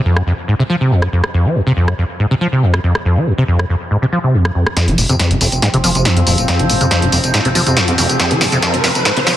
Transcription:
0.05 acid bass F2
0.17 acid bass F#2, cross-stick
0.27 acid bass F2
0.48 acid bass G#2
0.59 acid bass C3
0.70 acid bass F3
0.81 acid bass C3
0.91 acid bass F2
1.02 acid bass F#2, cross-stick
1.12 acid bass F2
1.24 cross-stick
1.34 acid bass F2
1.45 acid bass F3
1.55 acid bass F2
1.67 acid bass C3
1.77 acid bass F2
1.88 acid bass F#2, cross-stick
1.98 acid bass F2
2.20 acid bass G#2
2.31 acid bass C3
2.41 acid bass F3
2.52 acid bass C3
2.62 acid bass F2
2.74 acid bass F#2, cross-stick
2.84 acid bass F2
2.95 cross-stick
3.05 acid bass F2
3.17 acid bass F3
3.27 acid bass F2
3.38 acid bass C3
3.48 acid bass F2
3.59 acid bass F#2, cross-stick
3.69 acid bass F2
3.91 acid bass G#2
4.02 acid bass C3
4.12 acid bass F3
4.24 acid bass C3
4.34 acid bass F2
4.45 acid bass F#2, cross-stick
4.55 acid bass F2
4.67 cross-stick
4.77 acid bass F2, synth drone F3 C4, snare, closed hi-hat, tambourine, riser
4.88 analog synth bass F1, acid bass F3, closed hi-hat
4.98 analog synth bass F1, acid bass F2, open hi-hat, tambourine
5.09 analog synth bass F2, acid bass C3, closed hi-hat, tambourine
5.19 acid bass F2, snare, closed hi-hat, tambourine
5.31 analog synth bass F1, acid bass F#2, closed hi-hat
5.41 analog synth bass F1, acid bass F2, open hi-hat, tambourine
5.52 analog synth bass F1, closed hi-hat, tambourine
5.62 acid bass G#2, snare, closed hi-hat, tambourine
5.74 analog synth bass F1, acid bass C3, closed hi-hat
5.84 analog synth bass F1, acid bass F3, open hi-hat, tambourine
5.95 analog synth bass F1, acid bass C3, closed hi-hat, tambourine
6.05 acid bass F2, snare, closed hi-hat, tambourine
6.17 analog synth bass F2, acid bass F#2, closed hi-hat
6.27 analog synth bass D#1, acid bass F2, open hi-hat, tambourine
6.38 analog synth bass D#1, closed hi-hat, tambourine
6.48 acid bass F2, snare, closed hi-hat, tambourine
6.59 analog synth bass F1, acid bass F3, closed hi-hat
6.70 analog synth bass F1, acid bass F2, open hi-hat, tambourine
6.81 analog synth bass F2, acid bass C3, closed hi-hat, tambourine
6.91 acid bass F2, snare, closed hi-hat, tambourine
7.02 analog synth bass F1, acid bass F#2, closed hi-hat
7.12 analog synth bass F1, acid bass F2, open hi-hat, tambourine
7.24 analog synth bass F1, closed hi-hat, tambourine
7.34 acid bass G#2, snare, closed hi-hat
7.45 analog synth bass F1, acid bass C3, closed hi-hat
7.55 analog synth bass F1, acid bass F3, open hi-hat, tambourine
7.67 analog synth bass F2, acid bass C3, closed hi-hat, tambourine
7.77 acid bass F2, snare, closed hi-hat, tambourine
7.88 analog synth bass F2, acid bass F#2, closed hi-hat
7.98 analog synth bass F1, acid bass F2, open hi-hat, tambourine
8.09 analog synth bass F1, closed hi-hat, tambourine
8.20 acid bass F2, snare, closed hi-hat, tambourine
8.31 analog synth bass F1, acid bass F3, closed hi-hat
8.41 analog synth bass F1, acid bass F2, snare, open hi-hat, tambourine
8.52 analog synth bass F2, acid bass C3, closed hi-hat, tambourine
8.62 acid bass F2, snare, closed hi-hat, tambourine
8.74 analog synth bass F1, acid bass F#2, closed hi-hat
8.84 analog synth bass F1, acid bass F2, snare, open hi-hat, tambourine
8.95 analog synth bass F1, closed hi-hat, tambourine
9.05 acid bass G#2, snare, closed hi-hat, tambourine
9.17 analog synth bass F1, acid bass C3, closed hi-hat
9.27 analog synth bass F1, acid bass F3, snare, open hi-hat, tambourine

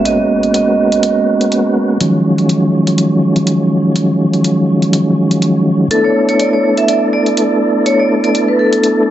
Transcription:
Already playing: tonewheel organ G#3 A#3 B3 C#4 F#4
0.05 vibraphone D#5, closed hi-hat
0.43 closed hi-hat
0.54 vibraphone D#5, closed hi-hat
0.92 closed hi-hat
1.03 closed hi-hat
1.41 closed hi-hat
1.52 closed hi-hat
2.00 tonewheel organ D#3 F3 F#3 G#3 C#4, closed hi-hat
2.38 closed hi-hat
2.49 closed hi-hat
2.87 closed hi-hat
2.98 closed hi-hat
3.36 closed hi-hat
3.47 closed hi-hat
3.96 closed hi-hat
4.33 closed hi-hat
4.44 closed hi-hat
4.82 closed hi-hat
4.93 closed hi-hat
5.31 closed hi-hat
5.42 closed hi-hat
5.91 tonewheel organ A3 B3 D4 E4 A4, vibraphone A4, closed hi-hat
6.04 vibraphone C#5
6.29 vibraphone C#5, closed hi-hat
6.40 vibraphone D5, closed hi-hat
6.53 vibraphone C#5
6.77 vibraphone E5, closed hi-hat
6.88 vibraphone D5, closed hi-hat
7.13 vibraphone D5
7.26 closed hi-hat
7.37 closed hi-hat
7.86 vibraphone C#5, closed hi-hat
7.99 vibraphone D5
8.24 vibraphone D5, closed hi-hat
8.35 closed hi-hat
8.48 vibraphone B4
8.59 vibraphone A4
8.73 closed hi-hat
8.84 closed hi-hat

